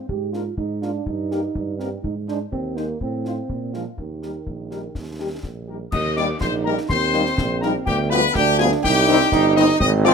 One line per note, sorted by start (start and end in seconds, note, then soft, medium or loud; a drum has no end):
0.09 0.50 G#2 medium
0.09 0.35 G4 medium
0.09 concert bass drum medium
0.33 0.42 A#3 soft
0.33 0.42 D4 soft
0.33 0.42 F4 soft
0.33 0.57 F4 medium
0.33 0.43 A#4 soft
0.33 snare soft
0.57 0.98 G#2 medium
0.57 0.84 D#4 medium
0.57 concert bass drum medium
0.82 0.91 A#3 soft
0.82 1.08 D4 medium
0.82 0.91 D4 soft
0.82 0.91 F4 soft
0.82 0.91 A#4 soft
0.82 snare soft
1.06 1.47 G2 medium
1.06 1.78 D#4 medium
1.06 concert bass drum medium
1.31 1.40 A#3 soft
1.31 1.40 D#4 medium
1.31 1.40 G4 medium
1.31 1.40 A#4 soft
1.31 snare soft
1.55 1.96 G2 medium
1.55 concert bass drum medium
1.78 1.88 A#3 soft
1.78 1.90 C4 medium
1.78 1.88 D#4 soft
1.78 1.88 G4 soft
1.78 1.88 A#4 soft
1.78 snare soft
2.03 2.44 G#2 medium
2.03 2.15 D#4 medium
2.03 concert bass drum medium
2.28 2.37 G#3 soft
2.28 2.39 D4 medium
2.28 2.37 D#4 soft
2.28 2.37 C5 soft
2.28 snare soft
2.52 2.93 D#2 medium
2.52 2.78 C4 medium
2.52 concert bass drum medium
2.76 2.85 G#3 soft
2.76 3.01 A#3 medium
2.76 2.86 D#4 soft
2.76 2.85 C5 soft
2.76 snare soft
3.01 3.42 A2 medium
3.01 3.71 C4 medium
3.01 concert bass drum medium
3.25 3.34 C4 soft
3.25 3.34 D#4 soft
3.25 3.34 F4 soft
3.25 3.34 C5 soft
3.25 snare soft
3.49 3.90 A#2 soft
3.49 concert bass drum medium
3.74 3.86 F3 soft
3.74 3.83 G#3 soft
3.74 3.83 D4 soft
3.74 3.83 F4 soft
3.74 3.83 A#4 soft
3.74 snare soft
3.98 4.39 D#2 soft
3.98 5.41 D#3 soft
3.98 concert bass drum medium
4.22 4.31 G3 soft
4.22 4.31 D#4 soft
4.22 4.31 G4 soft
4.22 4.32 A#4 soft
4.22 snare soft
4.47 4.87 A#1 soft
4.47 concert bass drum medium
4.71 4.80 G3 soft
4.71 4.80 D#4 soft
4.71 4.80 G4 soft
4.71 4.80 A#4 soft
4.71 snare soft
4.95 5.36 D#2 soft
4.95 concert bass drum medium
4.95 snare soft
5.20 5.29 G3 soft
5.20 5.28 D#4 soft
5.20 5.29 G4 soft
5.20 5.29 A#4 soft
5.43 5.84 A#1 medium
5.43 concert bass drum medium
5.43 snare soft
5.68 5.77 G3 soft
5.68 5.77 D#4 soft
5.68 5.77 G4 soft
5.68 5.77 A#4 soft
5.91 6.33 D#2 medium
5.91 6.15 D#5 loud
5.91 6.15 D#6 loud
5.91 concert bass drum medium
5.91 crash medium
6.16 6.25 G3 medium
6.16 6.26 G3 medium
6.16 6.26 A#3 medium
6.16 6.25 D#4 medium
6.16 6.28 D5 loud
6.16 6.39 D6 medium
6.16 snare medium
6.40 6.77 A#1 medium
6.40 6.87 D#4 medium
6.40 6.52 C5 loud
6.40 6.46 C6 loud
6.40 concert bass drum medium
6.40 snare medium
6.64 6.74 G3 medium
6.64 6.74 A#3 medium
6.64 6.74 D#4 medium
6.64 6.77 A#4 loud
6.64 6.70 A#5 medium
6.77 snare medium
6.89 7.30 D#2 medium
6.89 7.89 C4 loud
6.89 7.59 C5 loud
6.89 7.58 C6 loud
6.89 concert bass drum medium
6.89 snare medium
7.13 7.22 G3 medium
7.13 7.23 G3 medium
7.13 7.22 A#3 medium
7.13 7.23 A#3 medium
7.13 7.23 D#4 medium
7.13 snare medium
7.26 snare medium
7.38 7.78 A#1 medium
7.38 concert bass drum medium
7.38 snare medium
7.61 7.71 G3 medium
7.61 7.71 A#3 medium
7.61 7.72 D#4 medium
7.61 7.74 A#4 medium
7.61 7.67 A#5 medium
7.61 snare medium
7.85 8.27 D2 medium
7.85 8.35 B3 medium
7.85 7.97 G4 loud
7.85 8.11 G5 medium
7.85 concert bass drum medium
7.85 crash soft
8.10 8.19 F3 medium
8.10 8.20 G3 medium
8.10 8.19 B3 medium
8.10 8.20 B3 medium
8.10 8.20 F4 medium
8.10 8.33 B4 loud
8.10 8.34 B5 medium
8.10 snare medium
8.34 8.75 D2 loud
8.34 8.86 D4 loud
8.34 8.59 G4 loud
8.34 8.57 G5 loud
8.34 concert bass drum medium
8.34 snare medium
8.58 8.68 F3 medium
8.58 8.68 G3 medium
8.58 8.68 B3 medium
8.58 8.68 F4 medium
8.58 8.70 G#4 loud
8.58 8.64 G#5 loud
8.72 snare medium
8.83 9.24 C2 loud
8.83 9.32 D#4 loud
8.83 9.52 G4 loud
8.83 9.58 G5 loud
8.83 concert bass drum medium
8.83 snare medium
9.07 9.17 D#3 loud
9.07 9.16 G3 medium
9.07 9.16 C4 medium
9.07 9.17 C4 loud
9.07 9.16 D#4 medium
9.07 snare medium
9.20 snare medium
9.31 9.72 G1 loud
9.31 9.77 D#4 loud
9.31 concert bass drum medium
9.31 snare medium
9.55 9.64 D#3 medium
9.55 9.65 G3 medium
9.55 9.64 C4 medium
9.55 9.65 C4 medium
9.55 9.79 D#4 loud
9.55 9.65 D#4 medium
9.55 9.79 D#5 loud
9.55 snare medium
9.79 10.14 G#1 loud
9.79 10.14 C4 loud
9.79 9.91 D#5 loud
9.79 9.85 D#6 loud
9.79 concert bass drum loud
9.79 crash soft
10.04 10.13 F3 loud
10.04 10.14 G#3 loud
10.04 10.13 C4 medium
10.04 10.13 C4 loud
10.04 10.14 F4 loud
10.04 10.14 D5 loud
10.04 10.10 D6 loud
10.04 snare medium